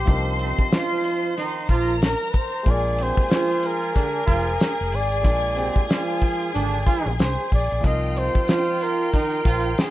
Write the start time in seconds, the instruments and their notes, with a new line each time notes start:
Already playing: flugelhorn G4, violin section C5 C6
0.05 fingered electric bass C2, grand piano F3 C4 D4 D#4, kick, closed hi-hat
0.10 grand piano A#4
0.39 horn section C3 C4, closed hi-hat, tambourine
0.59 muted fingered electric bass stroke, kick
0.72 horn section F3 F4, snare, closed hi-hat, tambourine
1.04 closed hi-hat, tambourine
1.37 horn section D#3 D#4, snare, closed hi-hat, tambourine
1.69 fingered electric bass A#1, horn section F3 F4, violin section A#4 A#5, kick, closed hi-hat, tambourine
2.02 snare, closed hi-hat, tambourine
2.06 flugelhorn A#4
2.31 flugelhorn B4, kick, closed hi-hat
2.35 flugelhorn C5, tambourine
2.63 fingered electric bass A#1, grand piano G#3 A#3 D4 F4, kick, closed hi-hat
2.67 violin section G#4 G#5, grand piano A#4, flugelhorn D5
2.98 horn section C3 C4, closed hi-hat, tambourine
3.03 flugelhorn C5
3.17 muted fingered electric bass stroke, kick
3.30 horn section F3 F4, snare, closed hi-hat, tambourine
3.63 flugelhorn A#4, closed hi-hat, tambourine
3.95 horn section D3 D4, kick, snare, closed hi-hat, tambourine
4.27 fingered electric bass F1, horn section F3 F4, kick, closed hi-hat, tambourine
4.60 snare, closed hi-hat, tambourine
4.81 fingered electric bass F1
4.92 fingered electric bass G#1, flugelhorn D5, closed hi-hat, tambourine
5.22 fingered electric bass A#1, grand piano G#3 A#3 D4 F4, kick, closed hi-hat, tambourine
5.26 grand piano A#4
5.56 horn section C3 C4, closed hi-hat, tambourine
5.76 muted fingered electric bass stroke, kick
5.89 horn section F3 F4, snare, closed hi-hat, tambourine
6.21 kick, closed hi-hat, tambourine
6.54 fingered electric bass G#1, horn section D3 D4, closed hi-hat, tambourine
6.87 horn section F3 F4, kick, closed hi-hat, tambourine
7.06 fingered electric bass A#1, closed hi-hat
7.19 fingered electric bass C2, flugelhorn C5, snare, closed hi-hat, tambourine
7.52 fingered electric bass A#1, flugelhorn D5, kick, open hi-hat, tambourine
7.71 fingered electric bass A#1, closed hi-hat
7.81 fingered electric bass C2, grand piano F3 C4 D#4 F4, violin section F4 G5, kick, closed hi-hat, tambourine
7.85 grand piano A#4, flugelhorn D#5
8.16 horn section C3 C4, flugelhorn C5, closed hi-hat, tambourine
8.35 muted fingered electric bass stroke, kick
8.48 horn section F3 F4, snare, closed hi-hat, tambourine
8.80 flugelhorn A#4, closed hi-hat, tambourine
9.13 horn section D#3 D#4, kick, closed hi-hat, tambourine
9.45 fingered electric bass A#1, horn section F3 F4, kick, closed hi-hat, tambourine
9.78 flugelhorn G#4, snare, closed hi-hat, tambourine